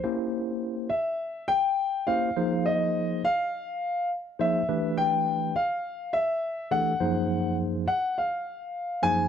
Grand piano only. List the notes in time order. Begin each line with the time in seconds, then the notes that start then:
0.89 E5
1.48 G5
2.07 F5
2.66 D#5
3.25 F5
4.41 E5
4.97 G5
5.56 F5
6.13 E5
6.71 F#5
7.88 F#5
8.18 F5
9.03 G#5